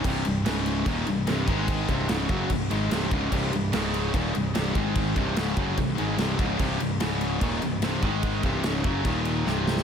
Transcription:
<<
  \new Staff \with { instrumentName = "Distorted electric guitar" } { \clef bass \time 4/4 \key c \minor \tempo 4 = 147 <c, g, c>8 <c, g,>8 <des, aes, des>4 <ees, bes, ees>8 <c, g,>8 <c, g, c>8 <aes, ees aes>8~ | <aes, ees aes>8 <c, g, c>8 <des, aes, des>8 <fis, des fis>8 <c, g,>8 <aes, ees aes>8 <c, g, c>8 <des, aes, des>8 | <c, g, c>8 <c, g,>8 <des, aes, des>4 <ees, bes, ees>8 <c, g,>8 <c, g, c>8 <aes, ees aes>8~ | <aes, ees aes>8 <c, g, c>8 <des, aes, des>8 <fis, des fis>8 <c, g,>8 <aes, ees aes>8 <c, g, c>8 <des, aes, des>8 |
<c, g, c>8 <c, g,>8 <des, aes, des>4 <ees, bes, ees>8 <c, g,>8 <c, g, c>8 <aes, ees aes>8~ | <aes, ees aes>8 <c, g, c>8 <des, aes, des>8 <fis, des fis>8 <ees, bes, ees>4 <c, g, c>4 | }
  \new Staff \with { instrumentName = "Distorted electric guitar" } { \clef bass \time 4/4 \key c \minor <c, g, c>8 <c, g,>8 <des, aes, des>4 <ees, bes, ees>8 <c, g,>8 <c, g, c>8 <aes, ees aes>8~ | <aes, ees aes>8 <c, g, c>8 <des, aes, des>8 <fis, des fis>8 <c, g,>8 <aes, ees aes>8 <c, g, c>8 <des, aes, des>8 | <c, g, c>8 <c, g,>8 <des, aes, des>4 <ees, bes, ees>8 <c, g,>8 <c, g, c>8 <aes, ees aes>8~ | <aes, ees aes>8 <c, g, c>8 <des, aes, des>8 <fis, des fis>8 <c, g,>8 <aes, ees aes>8 <c, g, c>8 <des, aes, des>8 |
<c, g, c>8 <c, g,>8 <des, aes, des>4 <ees, bes, ees>8 <c, g,>8 <c, g, c>8 <aes, ees aes>8~ | <aes, ees aes>8 <c, g, c>8 <des, aes, des>8 <fis, des fis>8 <ees, bes, ees>4 <c, g, c>4 | }
  \new Staff \with { instrumentName = "Picked electric bass" } { \clef bass \time 4/4 \key c \minor c,,8 c,,8 des,,4 ees,,8 c,,8 c,,8 aes,,8~ | aes,,8 c,,8 des,,8 fis,,8 c,,8 aes,,8 c,,8 des,,8 | c,,8 c,,8 des,,4 ees,,8 c,,8 c,,8 aes,,8~ | aes,,8 c,,8 des,,8 fis,,8 c,,8 aes,,8 c,,8 des,,8 |
c,,8 c,,8 des,,4 ees,,8 c,,8 c,,8 aes,,8~ | aes,,8 c,,8 des,,8 fis,,8 ees,,4 c,,4 | }
  \new DrumStaff \with { instrumentName = "Drums" } \drummode { \time 4/4 <cymc bd>8 cymc8 <cymc sn>8 cymc8 <cymc bd>8 cymc8 <cymc sn>8 <cymc bd>8 | <cymc bd>8 <cymc bd>8 <cymc sn>8 <cymc bd>8 <cymc bd>8 cymc8 <cymc sn>8 <cymc bd>8 | <cymc bd>8 cymc8 <cymc sn>8 cymc8 <cymc bd>8 cymc8 <cymc sn>8 <cymc bd>8 | <cymc bd>8 <cymc bd>8 <cymc sn>8 <cymc bd>8 <cymc bd>8 cymc8 <cymc sn>8 <cymc bd>8 |
<cymc bd>8 cymc8 <cymc sn>8 cymc8 <cymc bd>8 cymc8 <cymc sn>8 <cymc bd>8 | <cymc bd>8 <cymc bd>8 <cymc sn>8 <cymc bd>8 <cymc bd>8 cymc8 sn8 sn16 sn16 | }
>>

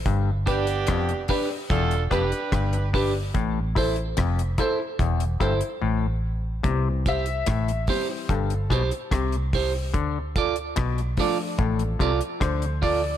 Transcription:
<<
  \new Staff \with { instrumentName = "Clean electric guitar" } { \time 4/4 \key c \major \tempo 4 = 73 r8 <d' g' b'>8 r8 <d' g' b'>8 r8 <d' g' b'>8 r8 <d' g' b'>8 | r8 <e' a' c''>8 r8 <e' a' c''>8 r8 <e' a' c''>8 r4 | r8 <e' g' c''>8 r8 <e' g' c''>8 r8 <e' g' c''>8 r8 <e' g' c''>8 | r8 <f' a' d''>8 r8 <f' a' d''>8 r8 <f' a' d''>8 r8 <f' a' d''>8 | }
  \new Staff \with { instrumentName = "Upright piano" } { \time 4/4 \key c \major r8 <d' g' b'>8 r8 <d' g' b'>8 r8 <d' g' b'>8 r8 <d' g' b'>8 | r8 <e' a' c''>8 r8 <e' a' c''>8 r8 <e' a' c''>8 r4 | r8 e''4 c''8 a'4 g'8 r8 | r2 a'4 c''8 d''8 | }
  \new Staff \with { instrumentName = "Upright piano" } { \clef bass \time 4/4 \key c \major r1 | r1 | <e g c'>8 r4 <e g c'>8 r2 | r4. <f a d'>2~ <f a d'>8 | }
  \new Staff \with { instrumentName = "Horn section" } { \time 4/4 \key c \major r8 <b d' g'>4 r8 <d' f' a'>8 <d' g' b'>4 r8 | r1 | r1 | r1 | }
  \new Staff \with { instrumentName = "Clav" } { \clef bass \time 4/4 \key c \major g,8 r8 f,8 r8 e,8 f,16 r16 g,8 r8 | a,8 r8 f,8 r8 e,8 g,16 r16 a,8 r8 | c8 r8 a,8 r8 g,8 b,16 r16 c8 r8 | d8 r8 b,8 r8 a,8 c16 r16 d8 r8 | }
  \new Staff \with { instrumentName = "Fingered electric bass" } { \clef bass \time 4/4 \key c \major g,,4 f,,8 r8 e,,8 f,,16 r16 g,,4 | a,,4 f,,8 r8 e,,8 g,,16 r16 a,,4 | c,4 a,,8 r8 g,,8 b,,16 r16 c,4 | d,4 b,,8 r8 a,,8 c,16 r16 d,4 | }
  \new DrumStaff \with { instrumentName = "Drums" } \drummode { \time 4/4 <hh bd>8 <hh bd>16 hh16 <hh bd ss>16 hh16 <hho bd>8 <hh bd>16 hh16 <hh bd ss>16 hh16 <hh bd ss>16 hh16 <hho bd>8 | <hh bd>8 <hho bd>16 hh16 <hh bd ss>16 hh16 <hh bd>8 <hh bd>16 hh16 <hh bd>16 hh16 r4 | <hh bd>8 <hh bd>16 hh16 <hh bd ss>16 hh16 <hho bd>8 <hh bd>16 hh16 <hh bd ss>16 hh16 <hh bd ss>16 hh16 <hho bd>8 | <hh bd>8 <hh bd>16 hh16 <hh bd ss>16 hh16 <hho bd>8 <hh bd>16 hh16 <hh bd>16 hh16 <hh bd ss>16 hh16 <hho bd>8 | }
>>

